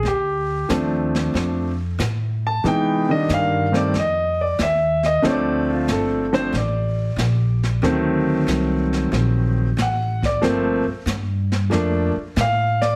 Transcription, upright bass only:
X:1
M:4/4
L:1/8
Q:"Swing" 1/4=92
K:Dphr
V:1 name="Upright bass" clef=bass
D,,2 E,,2 F,,2 A,,2 | C,2 G,,2 F,,2 E,,2 | D,,2 G,,,2 A,,,2 B,,,2 | D,,2 C,,2 B,,,2 A,,,2 |
G,,, z G,,2 F,, z A,,2 |]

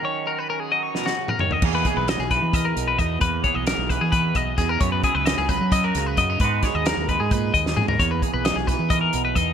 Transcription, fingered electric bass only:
X:1
M:7/8
L:1/16
Q:1/4=132
K:Elyd
V:1 name="Fingered electric bass" clef=bass
z12 z2 | E,,2 z B,,,2 B,,,2 E,3 B,,,2 E,,2 | E,,2 z B,,,2 B,,,2 E,3 B,,,2 E,,2 | F,,2 z C,,2 C,,2 F,3 C,,2 F,,2 |
G,,2 z D,,2 D,,2 G,,3 D,,2 G,,2 | E,,2 z B,,,2 B,,,2 E,3 B,,,2 E,,2 |]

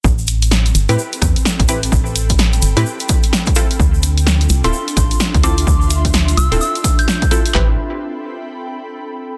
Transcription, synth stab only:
X:1
M:4/4
L:1/16
Q:"Swing 16ths" 1/4=128
K:Am
V:1 name="Synth stab"
z6 z [CEGB] z6 [CEGB] z | z6 z [CEGB] z6 [CEFA] z | z6 z [CEFA] z6 [CEFA] z | z6 z [CEFA] z6 [CEFA] z |
[CEGB]2 z12 z2 |]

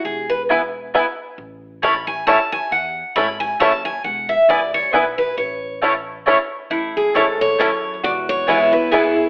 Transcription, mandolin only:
X:1
M:3/4
L:1/8
Q:"Swing" 1/4=135
K:A
V:1 name="Mandolin"
z2 [B,EBg] z [B,EBg] z | z2 [A,Eca] z [A,Eca] z | z2 [A,Eca] z [A,Eca] z | z2 [B,EBg] z [B,EBg] z |
z2 [A,Eca] z [A,Eca] z | z2 [A,Eca] z [A,Eca] z | z2 [B,EBg] z [B,EBg] z |]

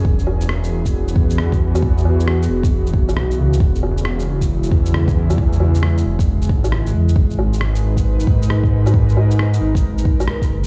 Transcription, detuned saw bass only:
X:1
M:4/4
L:1/8
Q:"Swing 16ths" 1/4=135
K:G#m
V:1 name="Detuned saw bass" clef=bass
E,,,3 E,,,2 E,,3- | E,,3 E,,,3 B,,, C,, | E,,,3 E,,,2 E,,3- | E,,3 E,,,2 G,,,2 E,, |
G,,,3 G,,,2 G,,3- | G,,3 G,,,2 z2 F,,, |]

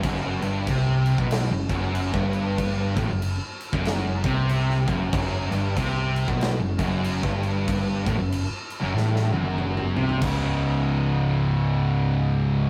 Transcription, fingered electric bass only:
X:1
M:4/4
L:1/16
Q:"Swing" 1/4=94
K:Alyd
V:1 name="Fingered electric bass" clef=bass
F,,,2 =G,,,2 =C,,3 B,,,2 F,,, F,,,3 G,,,3- | =G,,,2 A,,, F,,,2 z2 F,,,3 =C,,4 F,,,2 | F,,,2 =G,,,2 =C,,3 B,,,2 F,,, F,,,3 G,,,3- | =G,,,2 A,,, F,,,2 z2 F,,, A,,,2 F,,,4 =C,,2 |
C,,,16 |]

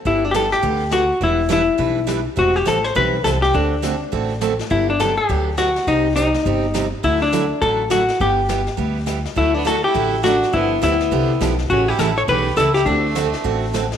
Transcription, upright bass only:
X:1
M:4/4
L:1/8
Q:"Swing" 1/4=206
K:G
V:1 name="Upright bass" clef=bass
G,,,4 D,,4 | E,,,4 B,,,4 | E,,,2 A,,,2 B,,,2 C,,2 | D,,4 A,,,4 |
G,,,4 D,,4 | C,,4 G,,,4 | D,,4 A,,,4 | G,,,4 D,,4 |
D,,4 A,,,4 | G,,,2 D,,2 C,,2 B,,,2 | A,,,2 A,,,2 B,,,2 ^C,,2 | D,,4 A,,,4 |]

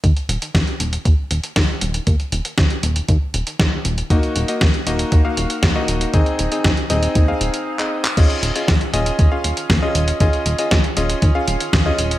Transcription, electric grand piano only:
X:1
M:4/4
L:1/16
Q:1/4=118
K:Dbmix
V:1 name="Electric grand piano"
z16 | z16 | [B,EGe]3 [B,EGe] z2 [B,EGe]3 [B,EGf]4 [B,EGe]3 | [=CEAe]3 [CEAe] z2 [CEAe]3 [CEAf]4 [CEAe]2 z |
[DFAe]3 [DFAe] z2 [DFAe]3 [DFAf]4 [DFAe]3 | [DFAe]3 [DFAe] z2 [DFAe]3 [DFAf]4 [DFAe]3 |]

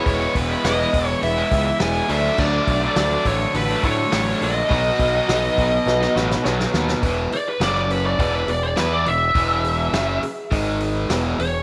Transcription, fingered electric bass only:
X:1
M:4/4
L:1/8
Q:1/4=103
K:E
V:1 name="Fingered electric bass" clef=bass
E,,, E,,, E,,, E,,, E,,, C,, E,,, =D,, | =D,, B,,, D,, A,,, A,,, A,, A,,, ^A,,, | B,,, B,,, B,,, B,,, B,,, A,,, B,,, D,, | E,,, z F,,,2 E,,, E,,, E,, E,,, |
E,,,2 F,,, z G,,,2 E,,, E,,, |]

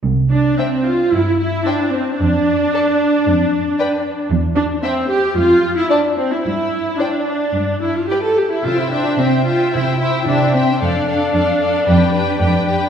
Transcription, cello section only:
X:1
M:4/4
L:1/8
Q:1/4=112
K:C
V:1 name="Cello section" clef=bass
C,,2 z2 G,,2 z2 | F,,2 z2 F,,2 z2 | E,,2 z2 F,,2 z2 | G,,2 z2 G,,2 z2 |
C,2 C,2 C,2 C,2 | F,,2 F,,2 F,,2 F,,2 |]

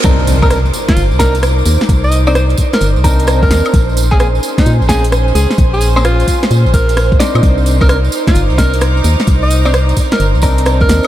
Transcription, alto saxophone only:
X:1
M:4/4
L:1/16
Q:"Swing 16ths" 1/4=130
K:Cm
V:1 name="Alto saxophone"
z3 B B z2 F z2 B z4 z | z e z c c z2 B z4 z B3 | z3 A A z2 E z2 A z3 A z | z A z2 F3 z3 B3 z3 |
z3 B B z2 F z2 B z4 z | z e z c c z2 B z4 z B3 |]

